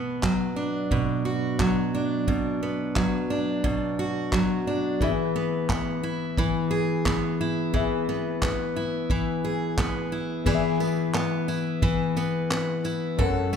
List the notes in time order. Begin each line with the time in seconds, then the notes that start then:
Already playing: B2 B3
0.23 F#3, kick, clap
0.56 D4
0.91 B2, kick
1.25 F#4
1.59 F#3, kick, clap
1.95 D4
2.28 B2, kick
2.63 B3
2.96 F#3, kick, clap
3.30 D4
3.64 B2, kick
3.99 F#4
4.32 F#3, kick, clap
4.67 D4
4.99 E3 B3 G#4, kick
5.04 E5
5.36 B3
5.69 B3, kick, clap
6.03 E4
6.37 E3, kick
6.71 G#4
7.05 B3, kick, clap
7.41 E4
7.72 E3 B3 G#4 E5, kick
8.09 B3
8.42 B3, kick, clap
8.76 E4
9.10 E3, kick
9.45 G#4
9.78 B3, kick, clap
10.12 E4
10.44 E3 B3 G#4 D5, kick, crash
10.54 E5
10.80 B3, tambourine
11.14 B3, clap
11.48 E4, tambourine
11.82 E3, kick
12.16 B3, tambourine
12.51 B3, clap
12.84 E4, tambourine
13.17 F#2 C#4 A4 F#5, kick
13.53 A3, tambourine